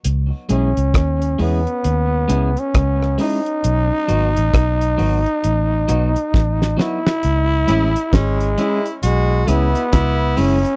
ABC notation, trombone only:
X:1
M:4/4
L:1/16
Q:"Swing 16ths" 1/4=67
K:C#m
V:1 name="Trombone"
z2 C4 B,4- B, C3 D2- | D12- D2 E2- | E4 G,4 G,2 B,4 C2 |]